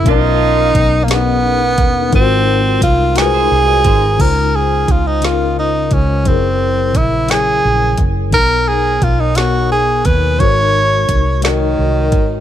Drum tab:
CC |------|------|x-----|------|
HH |x-xx-x|x-xx-x|x-xx-x|x-xx-x|
SD |---o--|---o--|---o--|---o--|
BD |o-o--o|o-o--o|o-o--o|o-o--o|

CC |------|------|
HH |x-xx-x|x-xx-x|
SD |---o--|---o--|
BD |o-o--o|o-o--o|